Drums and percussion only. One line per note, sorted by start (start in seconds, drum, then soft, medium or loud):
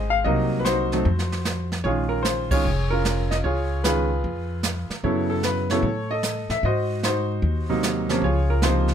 0.25 brush sweep soft
0.25 kick soft
0.65 snare medium
0.65 hi-hat pedal medium
0.92 snare soft
1.05 brush sweep soft
1.05 kick soft
1.19 snare soft
1.32 snare soft
1.45 snare soft
1.45 hi-hat pedal soft
1.72 snare soft
1.85 brush sweep soft
1.85 kick soft
2.25 snare soft
2.25 hi-hat pedal soft
2.51 kick medium
2.51 ride medium
2.65 brush sweep medium
3.05 snare soft
3.05 hi-hat pedal medium
3.31 snare soft
3.44 brush sweep soft
3.44 kick soft
3.84 snare medium
3.84 hi-hat pedal medium
4.24 brush sweep soft
4.24 kick soft
4.63 snare medium
4.63 hi-hat pedal medium
4.90 snare soft
5.04 brush sweep soft
5.04 kick soft
5.43 snare medium
5.43 hi-hat pedal soft
5.70 snare soft
5.83 brush sweep soft
5.83 kick soft
6.23 snare medium
6.23 hi-hat pedal medium
6.50 snare soft
6.63 brush sweep soft
6.63 kick soft
7.03 snare medium
7.03 hi-hat pedal soft
7.43 brush sweep soft
7.43 kick soft
7.83 snare medium
7.83 hi-hat pedal medium
8.09 snare soft
8.22 brush sweep soft
8.22 kick soft
8.62 snare medium
8.62 hi-hat pedal soft
8.88 snare soft